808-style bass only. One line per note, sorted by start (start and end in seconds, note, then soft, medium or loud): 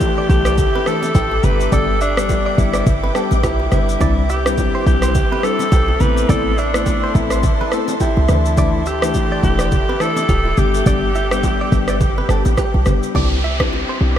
0.30 0.68 B1 loud
1.15 1.40 A1 loud
1.44 1.68 G1 loud
1.72 2.42 G1 loud
2.58 2.83 G1 loud
2.87 3.11 G1 loud
3.31 3.45 A1 medium
3.43 3.68 B1 loud
3.72 3.97 G1 loud
4.01 4.71 C2 loud
4.86 5.25 B1 loud
5.72 5.97 B1 loud
6.01 6.25 A1 loud
6.29 6.99 A1 loud
7.15 7.54 A1 loud
8.17 8.28 C2 medium
8.29 9.18 D2 loud
9.43 9.83 E1 loud
10.29 10.54 D1 medium
10.58 10.82 G1 loud
10.86 11.56 G1 loud
11.72 12.22 G1 loud
12.29 12.43 G1 medium
12.46 12.56 A1 medium
12.74 12.85 B1 medium
12.87 13.01 G1 loud
13.15 13.85 C2 loud
14.01 14.19 B1 medium